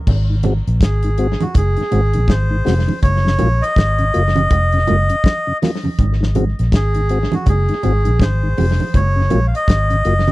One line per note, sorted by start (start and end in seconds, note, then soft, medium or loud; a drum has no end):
0.07 0.60 G#1 loud
0.07 kick loud
0.07 crash loud
0.07 low conga medium
0.30 0.36 G#2 medium
0.30 0.36 D#3 medium
0.43 0.53 G#3 medium
0.43 0.54 C4 medium
0.43 0.54 F#4 medium
0.43 closed hi-hat medium
0.43 high conga medium
0.43 low conga medium
0.68 0.80 A#1 medium
0.68 closed hi-hat medium
0.81 1.34 G#1 medium
0.81 1.43 G#4 medium
0.81 kick loud
0.81 snare loud
0.81 closed hi-hat medium
1.03 1.10 G#2 medium
1.03 1.10 D#3 medium
1.03 closed hi-hat medium
1.18 1.27 G#3 medium
1.18 1.27 C4 medium
1.18 1.27 F#4 medium
1.18 closed hi-hat medium
1.40 1.46 G#2 medium
1.40 1.47 D#3 medium
1.40 1.56 F#4 medium
1.40 closed hi-hat soft
1.40 high conga medium
1.55 1.75 F#1 medium
1.55 2.32 G#4 medium
1.55 kick loud
1.55 closed hi-hat medium
1.55 low conga medium
1.77 1.83 G#2 medium
1.77 1.83 D#3 medium
1.77 closed hi-hat soft
1.91 2.12 G#1 medium
1.91 2.00 G#3 medium
1.91 2.01 C4 medium
1.91 2.01 F#4 medium
1.91 closed hi-hat medium
1.91 low conga medium
2.13 2.28 A#1 medium
2.13 2.20 G#2 medium
2.13 2.20 D#3 medium
2.13 closed hi-hat medium
2.28 2.62 G#1 medium
2.28 3.00 C5 loud
2.28 kick loud
2.28 snare loud
2.28 closed hi-hat medium
2.28 high conga medium
2.50 2.57 G#2 medium
2.50 2.57 D#3 medium
2.65 2.86 F1 loud
2.65 2.74 G#3 medium
2.65 2.74 C4 medium
2.65 2.75 F#4 medium
2.65 snare medium
2.65 open hi-hat medium
2.65 high conga medium
2.87 2.94 G#2 medium
2.87 2.94 D#3 medium
2.87 high conga medium
3.03 3.36 F#1 loud
3.03 3.64 C#5 loud
3.03 kick loud
3.03 closed hi-hat loud
3.03 low conga medium
3.25 3.31 F#2 medium
3.25 3.31 C#3 medium
3.25 snare medium
3.39 3.60 A#1 medium
3.39 3.48 F#3 medium
3.39 3.49 A#3 medium
3.39 3.49 F4 medium
3.39 closed hi-hat medium
3.39 high conga medium
3.39 low conga medium
3.62 5.57 D#5 loud
3.62 closed hi-hat medium
3.76 4.10 G#1 medium
3.76 kick loud
3.76 snare loud
3.76 closed hi-hat medium
3.98 4.05 F#2 medium
3.98 4.05 C#3 medium
3.98 closed hi-hat medium
4.14 4.48 F#1 medium
4.14 4.23 F#3 medium
4.14 4.23 A#3 medium
4.14 4.23 F4 medium
4.14 closed hi-hat medium
4.35 4.42 F#2 medium
4.35 4.42 C#3 medium
4.35 closed hi-hat soft
4.35 high conga medium
4.50 4.84 F1 medium
4.50 kick loud
4.50 closed hi-hat medium
4.50 low conga medium
4.72 4.79 F#2 medium
4.72 4.79 C#3 medium
4.72 closed hi-hat soft
4.87 5.09 F#1 medium
4.87 4.96 F#3 medium
4.87 4.97 A#3 medium
4.87 4.97 F4 medium
4.87 closed hi-hat medium
4.87 low conga medium
5.09 5.16 F#2 medium
5.09 5.16 C#3 medium
5.09 closed hi-hat medium
5.24 kick loud
5.24 snare loud
5.24 closed hi-hat medium
5.24 high conga medium
5.47 5.53 F#2 medium
5.47 5.53 C#3 medium
5.62 5.71 F#3 medium
5.62 5.71 A#3 medium
5.62 5.71 F4 medium
5.62 snare medium
5.62 open hi-hat medium
5.62 high conga medium
5.83 5.90 F#2 medium
5.83 5.89 C#3 medium
5.83 high conga medium
5.99 6.52 G#1 loud
5.99 kick loud
5.99 closed hi-hat medium
5.99 low conga medium
6.20 6.26 G#2 medium
6.20 6.27 D#3 medium
6.20 snare medium
6.35 6.44 G#3 medium
6.35 6.44 C4 medium
6.35 6.45 F#4 medium
6.35 closed hi-hat medium
6.35 high conga medium
6.35 low conga medium
6.59 6.72 A#1 medium
6.59 closed hi-hat medium
6.72 7.26 G#1 medium
6.72 7.35 G#4 medium
6.72 kick loud
6.72 snare loud
6.72 closed hi-hat medium
6.94 7.01 G#2 medium
6.94 7.01 D#3 medium
6.94 closed hi-hat medium
7.09 7.19 G#3 medium
7.09 7.19 C4 medium
7.09 7.19 F#4 medium
7.09 closed hi-hat medium
7.32 7.38 G#2 medium
7.32 7.38 D#3 medium
7.32 7.48 F#4 medium
7.32 closed hi-hat soft
7.32 high conga medium
7.46 7.67 F#1 loud
7.46 8.24 G#4 medium
7.46 kick loud
7.46 closed hi-hat medium
7.46 low conga medium
7.69 7.75 G#2 medium
7.69 7.75 D#3 medium
7.69 closed hi-hat soft
7.83 8.04 G#1 medium
7.83 7.92 G#3 medium
7.83 7.93 C4 medium
7.83 7.93 F#4 medium
7.83 closed hi-hat medium
7.83 low conga medium
8.05 8.19 A#1 loud
8.05 8.11 G#2 medium
8.05 8.11 D#3 medium
8.05 closed hi-hat medium
8.20 8.53 G#1 medium
8.20 8.97 C5 loud
8.20 kick loud
8.20 snare loud
8.20 closed hi-hat medium
8.20 high conga soft
8.43 8.49 G#2 medium
8.43 8.49 D#3 medium
8.57 8.78 F1 loud
8.57 8.66 G#3 medium
8.57 8.66 C4 medium
8.57 8.66 F#4 medium
8.57 open hi-hat medium
8.57 high conga medium
8.79 8.85 G#2 medium
8.79 8.85 D#3 medium
8.79 high conga medium
8.94 9.28 F#1 loud
8.94 9.47 C#5 loud
8.94 kick loud
8.94 closed hi-hat loud
8.94 low conga medium
9.16 9.22 F#2 medium
9.16 9.22 C#3 medium
9.30 9.52 A#1 medium
9.30 9.40 F#3 medium
9.30 9.40 A#3 medium
9.30 9.40 F4 medium
9.30 closed hi-hat medium
9.30 high conga medium
9.30 low conga medium
9.48 9.55 F5 medium
9.55 10.32 D#5 loud
9.55 closed hi-hat medium
9.68 10.01 G#1 medium
9.68 kick loud
9.68 snare loud
9.68 closed hi-hat loud
9.90 9.96 F#2 medium
9.90 9.96 C#3 medium
9.90 closed hi-hat medium
10.05 10.32 F#1 medium
10.05 10.14 F#3 medium
10.05 10.14 A#3 medium
10.05 10.14 F4 medium
10.05 closed hi-hat medium
10.27 10.32 F#2 medium
10.27 10.32 C#3 medium
10.27 closed hi-hat soft
10.27 high conga medium